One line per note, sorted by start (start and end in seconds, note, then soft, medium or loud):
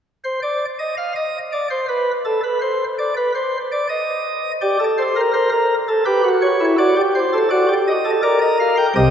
0.24 0.40 C5 medium
0.42 0.65 D5 medium
0.79 0.95 D#5 medium
0.97 1.13 F5 medium
1.16 1.38 D#5 medium
1.52 1.68 D5 medium
1.70 1.86 C5 medium
1.89 2.11 B4 medium
2.25 2.41 A4 medium
2.44 2.59 B4 medium
2.61 2.84 C5 medium
2.98 3.14 D5 medium
3.17 3.32 B4 medium
3.35 3.57 C5 medium
3.72 3.87 D5 medium
3.89 4.51 D#5 medium
4.61 4.77 G4 medium
4.61 4.84 D5 medium
4.79 5.02 A4 medium
4.98 5.20 C5 medium
5.16 5.31 A#4 medium
5.34 5.50 A#4 medium
5.34 5.49 C5 medium
5.52 5.74 A#4 medium
5.88 6.04 A4 medium
6.05 6.21 G4 medium
6.05 6.28 B4 medium
6.24 6.46 F#4 medium
6.42 6.64 C#5 medium
6.60 6.76 E4 medium
6.78 6.94 F#4 medium
6.78 7.01 D5 medium
6.96 7.19 G4 medium
7.15 7.37 C5 medium
7.33 7.48 A4 medium
7.50 7.66 F#4 medium
7.50 7.73 D5 medium
7.69 7.91 G4 medium
7.88 8.10 D#5 medium
8.05 8.21 A4 medium
8.23 8.86 A#4 medium
8.23 8.39 D5 medium
8.42 8.57 D#5 medium
8.60 8.76 F5 medium
8.77 8.93 G5 medium
8.96 9.10 C2 medium
8.96 9.10 C3 medium
8.96 9.10 G4 medium
8.96 9.10 D#5 medium